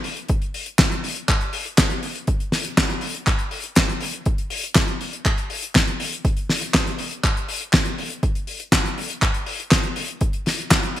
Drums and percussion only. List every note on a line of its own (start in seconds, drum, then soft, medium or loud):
0.04 open hi-hat loud
0.17 closed hi-hat medium
0.29 kick loud
0.29 closed hi-hat medium
0.42 closed hi-hat soft
0.54 open hi-hat loud
0.66 closed hi-hat medium
0.79 kick loud
0.79 snare loud
0.79 clap medium
0.79 closed hi-hat medium
0.92 closed hi-hat medium
1.04 open hi-hat loud
1.16 closed hi-hat medium
1.28 kick loud
1.28 clap medium
1.28 closed hi-hat medium
1.41 closed hi-hat soft
1.53 open hi-hat loud
1.66 closed hi-hat medium
1.78 kick loud
1.78 snare loud
1.78 clap loud
1.78 closed hi-hat medium
1.90 closed hi-hat soft
2.03 open hi-hat loud
2.15 closed hi-hat medium
2.27 kick loud
2.27 closed hi-hat medium
2.40 closed hi-hat soft
2.52 snare medium
2.52 open hi-hat loud
2.65 closed hi-hat medium
2.77 kick loud
2.77 snare loud
2.77 clap medium
2.77 closed hi-hat medium
2.90 closed hi-hat soft
3.01 open hi-hat loud
3.15 closed hi-hat medium
3.27 kick loud
3.27 clap medium
3.27 closed hi-hat medium
3.39 closed hi-hat soft
3.51 open hi-hat loud
3.64 closed hi-hat medium
3.75 kick loud
3.75 snare loud
3.75 clap medium
3.75 closed hi-hat medium
3.89 closed hi-hat soft
4.00 open hi-hat loud
4.13 closed hi-hat medium
4.26 kick loud
4.26 closed hi-hat medium
4.38 closed hi-hat soft
4.50 open hi-hat loud
4.63 closed hi-hat medium
4.75 kick loud
4.75 snare loud
4.75 clap medium
4.75 closed hi-hat medium
4.88 closed hi-hat soft
5.01 open hi-hat loud
5.13 closed hi-hat medium
5.25 kick loud
5.25 clap medium
5.25 closed hi-hat medium
5.38 closed hi-hat soft
5.50 open hi-hat loud
5.63 closed hi-hat medium
5.75 kick loud
5.75 snare loud
5.75 clap medium
5.75 closed hi-hat medium
5.87 closed hi-hat soft
6.00 open hi-hat loud
6.13 closed hi-hat medium
6.25 kick loud
6.25 closed hi-hat medium
6.37 closed hi-hat soft
6.50 snare medium
6.50 open hi-hat loud
6.61 closed hi-hat medium
6.74 kick loud
6.74 snare loud
6.74 clap medium
6.74 closed hi-hat medium
6.87 closed hi-hat soft
6.98 open hi-hat loud
7.11 closed hi-hat medium
7.24 kick loud
7.24 clap medium
7.24 closed hi-hat medium
7.37 closed hi-hat soft
7.48 open hi-hat loud
7.60 closed hi-hat medium
7.73 kick loud
7.73 snare loud
7.73 clap medium
7.73 closed hi-hat medium
7.85 closed hi-hat soft
7.98 open hi-hat loud
8.10 closed hi-hat medium
8.23 kick loud
8.23 closed hi-hat medium
8.35 closed hi-hat soft
8.47 open hi-hat loud
8.60 closed hi-hat medium
8.72 kick loud
8.72 snare loud
8.72 clap loud
8.72 closed hi-hat medium
8.86 closed hi-hat soft
8.98 open hi-hat loud
9.10 closed hi-hat medium
9.22 kick loud
9.22 clap medium
9.22 closed hi-hat medium
9.34 closed hi-hat soft
9.46 open hi-hat loud
9.60 closed hi-hat medium
9.71 kick loud
9.71 snare loud
9.71 clap medium
9.71 closed hi-hat medium
9.83 closed hi-hat soft
9.96 open hi-hat loud
10.08 closed hi-hat medium
10.21 kick loud
10.21 closed hi-hat medium
10.33 closed hi-hat soft
10.46 snare medium
10.46 open hi-hat loud
10.59 closed hi-hat medium
10.70 kick loud
10.70 snare loud
10.70 clap loud
10.70 closed hi-hat medium
10.83 closed hi-hat medium
10.96 open hi-hat loud